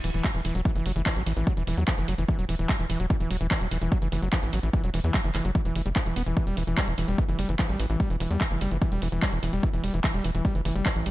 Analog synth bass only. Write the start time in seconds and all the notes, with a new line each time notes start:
0.04 E1
0.14 E1
0.35 E1
0.45 E1
0.55 E1
0.75 F#1
0.86 F#1
0.96 F#1
1.16 A1
1.26 A1
1.37 A1
1.57 E1
1.67 E1
1.78 E2
1.98 F#1
2.08 F#1
2.18 F#1
2.39 E1
2.49 E1
2.59 E1
2.80 E1
2.90 E1
3.00 E1
3.20 E1
3.31 E1
3.41 E1
3.61 E1
3.71 E1
3.82 E1
4.02 F#1
4.12 F#1
4.22 F#1
4.43 A1
4.53 A1
4.63 A1
4.84 E1
4.94 E1
5.04 E2
5.24 F#1
5.35 F#1
5.45 F#1
5.65 E1
5.75 F#1
5.86 F#1
6.06 E1
6.16 E1
6.27 E1
6.47 E1
6.57 E1
6.67 E1
6.88 E1
6.98 E1
7.08 E1
7.29 F#1
7.39 F#1
7.49 F#1
7.69 A1
7.80 A1
7.90 A1
8.10 E1
8.20 E1
8.31 E2
8.51 F#1
8.61 F#1
8.71 F#1
8.92 E1
9.02 E1
9.12 E1
9.33 E1
9.43 E1
9.53 E1
9.73 E1
9.84 E1
9.94 E1
10.14 E1
10.24 E1
10.35 E1
10.55 F#1
10.65 F#1
10.75 F#1
10.96 A1
11.06 A1